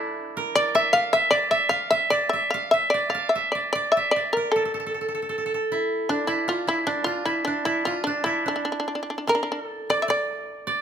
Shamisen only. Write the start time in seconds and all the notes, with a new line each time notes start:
Already playing: E4
0.55 D5
0.75 E5
0.93 F5
1.13 E5
1.31 D5
1.51 E5
1.69 F5
1.91 E5
2.10 D5
2.29 E5
2.50 F5
2.71 E5
2.90 D5
3.10 F5
3.29 E5
3.52 D5
3.73 D5
3.92 E5
4.11 D5
4.33 A#4
4.52 A4
6.09 D4
6.27 E4
6.49 F4
6.69 E4
6.87 D4
7.04 F4
7.25 E4
7.45 D4
7.65 E4
7.85 F4
8.04 D4
8.24 E4
8.48 D4
8.56 D4
8.65 D4
8.72 D4
8.80 D4
8.88 D4
8.95 D4
9.03 D4
9.10 D4
9.18 D4
9.27 D4 A#4
9.35 D4
9.43 D4
9.52 D4
9.90 D5
10.02 E5
10.10 D5